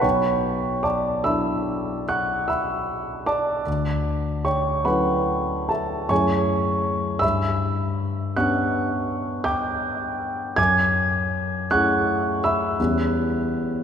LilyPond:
\new Staff \with { instrumentName = "Grand piano" } { \time 9/8 \key b \minor \tempo 4. = 52 << { <cis'' g'' cis'''>4 <d'' a'' d'''>8 <e'' b'' e'''>4 <fis'' cis''' fis'''>8 <e'' b'' e'''>4 <d'' a'' d'''>8~ | <d'' a'' d'''>4 <cis'' g'' cis'''>8 <b' fis'' b''>4 <a' e'' a''>8 <cis'' gis'' cis'''>4. | <e'' b'' e'''>4. <fis'' cis''' fis'''>4. <g'' d''' g'''>4. | <gis'' d''' gis'''>4. <fis'' cis''' fis'''>4 <e'' b'' e'''>8 r4. | } \\ { b,,4. <fis d' e' a'>2. | d,4. <fis cis' e' a'>4. <fis, a cis' e' gis'>4. | g,4. <b cis' d' g'>2. | fis,4. <a cis' e' gis'>4. <e, g cis' e' g'>4. | } >> }